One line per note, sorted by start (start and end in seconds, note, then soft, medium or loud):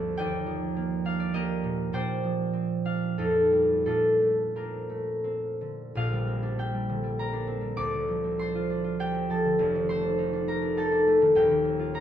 0.00 0.20 D2 medium
0.00 0.45 F3 medium
0.00 0.20 C4 medium
0.00 1.04 D4 medium
0.00 0.21 A4 medium
0.00 0.17 D5 medium
0.00 1.04 F5 medium
0.00 0.20 A5 medium
0.17 1.97 D#2 medium
0.17 1.19 D5 medium
0.17 1.33 D#5 medium
0.17 1.92 G5 loud
0.46 2.23 F3 medium
0.77 1.33 A#3 medium
1.05 2.84 D4 medium
1.05 2.84 F5 medium
1.20 1.45 D5 medium
1.33 3.20 A#3 medium
1.33 3.88 G4 medium
1.33 3.21 A#4 medium
1.33 1.96 D#5 loud
1.64 1.92 A#2 medium
1.93 3.20 A#2 medium
1.93 5.84 C5 medium
1.93 5.85 D5 medium
1.93 3.87 G5 loud
2.24 6.14 F3 medium
2.53 4.54 C4 medium
2.85 3.51 D4 medium
2.85 5.96 F5 medium
3.18 3.88 F2 medium
3.18 3.88 D#4 medium
3.18 3.86 F4 medium
3.18 3.85 A4 medium
3.52 3.88 G3 soft
3.52 3.86 D4 medium
3.86 5.95 A#2 medium
3.86 4.56 D4 medium
3.86 4.56 F4 medium
3.86 5.97 A4 medium
4.21 4.88 A3 soft
4.56 5.23 C4 soft
4.56 6.42 D4 soft
4.56 5.96 F4 soft
4.56 7.19 A#4 medium
4.90 5.97 A3 soft
5.24 6.26 C4 soft
5.61 5.98 D3 soft
5.95 7.79 A#1 medium
5.95 7.80 A#2 medium
5.95 8.54 F4 medium
5.95 9.87 F5 medium
6.13 6.73 G3 medium
6.27 6.57 C4 medium
6.43 7.32 D4 medium
6.58 7.18 C4 medium
6.58 7.80 G4 medium
6.58 7.80 G5 medium
6.74 7.02 G3 medium
6.89 7.80 D3 medium
7.03 7.60 G3 soft
7.19 7.46 C4 medium
7.19 7.81 A#4 medium
7.19 7.80 A#5 medium
7.33 8.39 D4 medium
7.47 8.23 C4 medium
7.61 7.79 G3 medium
7.77 9.62 D2 medium
7.77 11.40 D5 medium
7.77 11.40 D6 loud
7.94 9.44 D3 soft
8.08 9.29 F3 medium
8.24 9.13 C4 medium
8.39 8.69 D4 medium
8.39 9.89 C5 medium
8.39 9.88 C6 medium
8.55 8.83 F4 medium
8.70 8.98 D4 medium
8.84 11.78 F4 medium
8.99 10.01 D4 medium
8.99 11.36 G4 medium
8.99 9.51 G5 loud
9.14 11.63 C4 medium
9.30 12.00 F3 medium
9.30 10.77 A4 medium
9.30 10.76 A5 medium
9.45 9.62 D3 medium
9.59 11.39 F1 medium
9.59 11.39 F2 medium
9.75 11.20 D#3 medium
9.89 10.47 A3 medium
9.89 12.00 C5 medium
9.89 12.00 C6 loud
10.03 10.32 D4 medium
10.18 10.76 D#4 medium
10.33 10.61 D4 medium
10.48 11.06 A3 medium
10.48 11.94 A#4 medium
10.48 10.99 A#5 loud
10.62 10.91 D4 medium
10.77 11.93 D#4 medium
10.77 11.40 A4 medium
10.77 11.39 A5 loud
10.92 11.39 D4 medium
11.07 11.39 A3 medium
11.22 11.39 D#3 medium
11.35 12.00 D#1 medium
11.35 12.00 D#2 medium
11.35 12.00 G4 medium
11.35 12.00 G5 medium
11.50 12.00 D#3 medium
11.65 12.00 C4 medium
11.79 12.00 F4 medium
11.94 12.00 D#4 medium
11.94 12.00 A#4 medium
11.94 12.00 A#5 loud